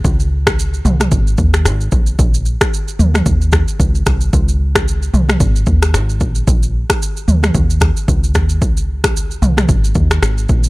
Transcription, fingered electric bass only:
X:1
M:4/4
L:1/16
Q:"Swing 16ths" 1/4=112
K:Abmix
V:1 name="Fingered electric bass" clef=bass
D,,6 C,,2 A,,,2 E,,2 A,,,2 B,,,2 | B,,,3 z3 E,,2 E,,3 z D,,2 C,,2 | D,,6 C,,2 A,,,2 E,,2 A,,,2 B,,,2 | B,,,3 z3 E,,2 E,,3 z D,,2 E,,2 |
D,,6 C,,2 A,,,2 E,,2 A,,,2 B,,,2 |]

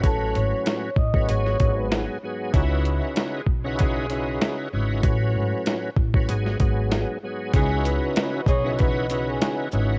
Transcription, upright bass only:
X:1
M:4/4
L:1/16
Q:"Swing 16ths" 1/4=96
K:C#m
V:1 name="Upright bass" clef=bass
A,,,2 G,,, z3 A,,,2 G,,,2 G,,,3 z3 | C,,3 z3 B,,,6 z2 G,,,2 | A,,,2 G,,, z3 A,,,2 G,,,2 G,,,3 z3 | C,,3 z3 B,,,6 z2 G,,,2 |]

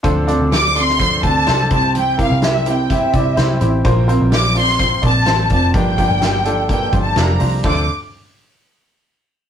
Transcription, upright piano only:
X:1
M:4/4
L:1/8
Q:1/4=126
K:Dm
V:1 name="Upright piano"
[DFAc] [DFAd] [DFAc] [DFAd] [DFAc] [DFAc] [DFAc] [CEGc]- | [CEGc] [CEGB] [CEGB] [CEGB] [CEGc] [CEGd] [CEGc] [CEGc] | [CFBc] [CFBc] [CFBd] [CFBd] [CFBc] [CFBd] [CFBc] [CFBd] | [DFGB] [DFGB] [DFGB] [DFGA] [DFGB] [DFGc] [DFGB] [DFGc] |
[DFAc] z6 z |]
V:2 name="Upright piano" clef=bass
D,3 z4 C,- | C,2 z6 | B,,3 z4 z | G,,3 z4 z |
D,, z6 z |]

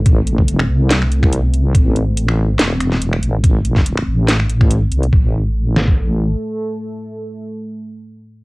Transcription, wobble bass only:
X:1
M:4/4
L:1/8
Q:"Swing 16ths" 1/4=142
K:Am
V:1 name="Wobble bass" clef=bass
A,,,3 C,,4- C,, | A,,,4 E,,,3 A,,,- | A,,,3 A,,,4 C,, | A,,,6 z2 |
z8 |]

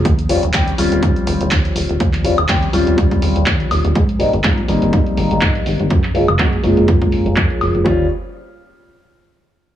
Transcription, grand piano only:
X:1
M:4/4
L:1/16
Q:"Swing 16ths" 1/4=123
K:Ebmix
V:1 name="Grand piano"
z2 [G,CDF]2 [G,CDG] z [G,CDF]2 [G,CD]8- | [G,CD]2 [G,CDF]2 [G,CDG] z [G,CDF]2 [G,CDF]8 | z2 [G,B,CE]2 [G,B,CF] z [G,B,CE]2 [G,B,E]8 | z2 [A,B,DF]2 [A,B,D_G] z [A,B,DF]2 [A,B,D]8 |
[G,CDF]2 z12 z2 |]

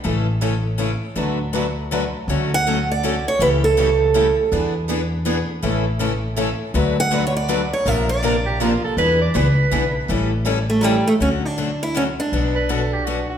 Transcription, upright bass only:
X:1
M:3/4
L:1/8
Q:"Swing" 1/4=161
K:D
V:1 name="Upright bass" clef=bass
A,,,6 | D,,6 | D,,6 | C,,6 |
E,,6 | A,,,6 | D,,6 | _B,,,6 |
E,,2 C,,2 B,,,2 | A,,,6 | D,,6 | B,,,6 |]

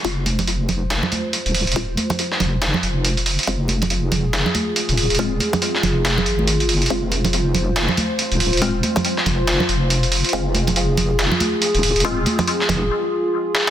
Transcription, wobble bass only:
X:1
M:4/4
L:1/16
Q:"Swing 16ths" 1/4=140
K:Fm
V:1 name="Wobble bass" clef=bass
F,,,6 F,,,3 z4 E,,,2 E,,,- | E,,,2 z4 F,,,3 z F,,,4- F,,, z | F,,,6 F,,,3 z4 E,,,2 E,,,- | E,,,2 z4 F,,,4 A,,,4 _G,,,2 |
F,,,6 F,,,3 z4 E,,,2 E,,,- | E,,,2 z4 F,,,3 z F,,,4- F,,, z | F,,,6 F,,,3 z4 E,,,2 E,,,- | E,,,2 z4 F,,,2 z8 |]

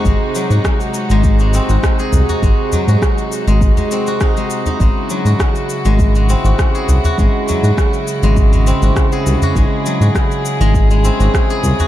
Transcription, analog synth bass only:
X:1
M:4/4
L:1/16
Q:1/4=101
K:none
V:1 name="Analog synth bass" clef=bass
^G,,, z2 ^G,, z3 G,,,3 z G,,, z2 ^B,,, z | ^G,,, z2 ^G,, z3 G,,, G,,, z6 z | ^G,,, z2 ^G,, z3 G,,,3 z G,,, z2 ^B,,, z | ^G,,, z2 ^G,, z3 G,,,3 z G,,, z2 ^B,,, z |
^G,,, z2 ^G,, z3 G,,,3 z G,,, z2 ^B,,, z |]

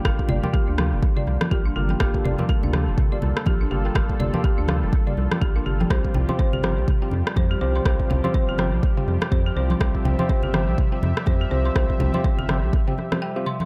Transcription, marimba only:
X:1
M:4/4
L:1/16
Q:"Swing 16ths" 1/4=123
K:Cmix
V:1 name="Marimba"
G z d g G D f z2 d z2 G D G g | G z d g G D f z2 d z2 G D G g | G z d g G D f z2 d z2 G D G g | c z g c' c G b z2 g z2 c G c c' |
c z g c' c G b z2 g z2 c G c c' | c z g c' c G b z2 g z2 c G c c' | c z g c' c G b z2 g z2 g f c' c' |]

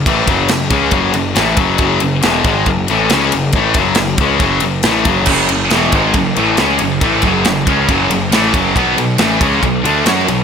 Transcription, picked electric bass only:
X:1
M:4/4
L:1/8
Q:1/4=138
K:F#m
V:1 name="Picked electric bass" clef=bass
A,,, F,,, F,,, C,, F,,, F,,, A,,, F,,, | F,,, F,,, E,,, G,,, F,,, A,,, C,, F,,, | A,,, F,,, F,,, C,, F,,, F,,, A,,, F,,, | F,,, F,,, E,,, G,,, F,,, A,,, C,, F,,, |
A,,, F,,, F,,, C,, F,,, F,,, A,,, F,,, | B,,, B,,, A,,, C,, B,,, D,, F,, B,,, |]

